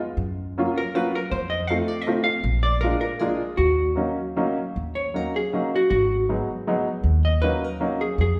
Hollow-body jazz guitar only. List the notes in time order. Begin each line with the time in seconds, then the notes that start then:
0.78 A#4
0.95 B4
1.15 A#4
1.31 C5
1.50 D#5
1.67 F5
1.88 D5
2.02 D#5
2.24 F5
2.63 D5
2.81 A#4
3.01 A#4
3.19 G#4
3.57 F#4
4.95 C#5
5.16 A#4
5.36 G#4
5.76 F#4
5.90 F#4
7.25 D#5
7.42 B4
7.64 A#4
8.01 G#4
8.21 G#4